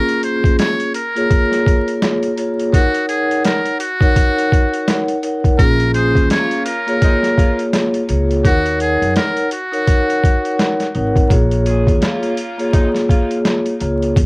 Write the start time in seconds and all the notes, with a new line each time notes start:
Already playing: A#3 C#4 F4 G#4 A#4
0.09 closed hi-hat
0.23 C5, closed hi-hat
0.44 kick, closed hi-hat
0.59 C#5, snare, closed hi-hat
0.80 closed hi-hat
0.94 A#4, closed hi-hat
1.15 A#3 F4 G#4 C#5, closed hi-hat
1.30 kick, closed hi-hat
1.52 snare, closed hi-hat
1.66 kick, closed hi-hat
1.88 closed hi-hat
2.02 snare, closed hi-hat
2.23 closed hi-hat
2.36 A#3 F4 G#4 C#5, closed hi-hat
2.59 closed hi-hat
2.72 D#4 F#4 A#4 C#5 F#5, kick, closed hi-hat
2.94 closed hi-hat
3.09 G#4, closed hi-hat
3.31 closed hi-hat
3.44 A#4, snare, closed hi-hat
3.65 closed hi-hat
3.80 F#4, closed hi-hat
4.00 D#4 A#4 C#5 F#5, kick, closed hi-hat
4.16 kick, closed hi-hat
4.38 closed hi-hat
4.52 kick, closed hi-hat
4.73 closed hi-hat
4.88 snare, closed hi-hat
5.08 closed hi-hat
5.23 D#4 A#4 C#5 F#5, closed hi-hat
5.44 kick, closed hi-hat
5.58 A#1 A#3 C#4 F4 G#4 A#4, kick, closed hi-hat
5.80 closed hi-hat
5.94 C#4 F4 G#4 C5, closed hi-hat
6.15 D#2, kick, closed hi-hat
6.30 A#3 C#4 F4 C#5, snare, closed hi-hat
6.51 closed hi-hat
6.66 A#4, closed hi-hat
6.86 A#3 F4 G#4 C#5, closed hi-hat
7.02 G#3 C4 D#4, kick, closed hi-hat
7.23 snare, closed hi-hat
7.38 A#3 C#4 F4, kick, closed hi-hat
7.59 closed hi-hat
7.73 snare, closed hi-hat
7.94 closed hi-hat
8.08 C#2 A#3 F4 G#4 C#5, closed hi-hat
8.31 closed hi-hat
8.44 D#2 D#4 F#4 A#4 C#5 F#5, kick, closed hi-hat
8.66 closed hi-hat
8.80 G#4, closed hi-hat
9.02 F#2, closed hi-hat
9.16 A#4, snare, closed hi-hat
9.37 closed hi-hat
9.51 F#4, closed hi-hat
9.72 D#4 A#4 C#5 F#5, closed hi-hat
9.88 kick, closed hi-hat
10.10 closed hi-hat
10.24 kick, closed hi-hat
10.45 closed hi-hat
10.59 snare, closed hi-hat
10.80 snare, closed hi-hat
10.94 G#1 D#4 A#4 C#5 F#5, closed hi-hat
11.16 kick, closed hi-hat
11.29 A#1 A#3 F4 G#4 C#5, kick, closed hi-hat
11.51 closed hi-hat
11.66 C#4 F4 G#4, closed hi-hat
11.87 D#2, kick, closed hi-hat
12.01 A#3 C#4 F4, snare, closed hi-hat
12.23 closed hi-hat
12.37 closed hi-hat
12.58 A#3 F4 G#4 C#5, closed hi-hat
12.73 G#3 C4 D#4, kick, closed hi-hat
12.95 snare, closed hi-hat
13.09 A#3 C#4 F4, kick, closed hi-hat
13.31 closed hi-hat
13.45 snare, closed hi-hat
13.66 closed hi-hat
13.80 C#2 A#3 F4 G#4 C#5, closed hi-hat
14.02 closed hi-hat
14.16 D#2, kick, closed hi-hat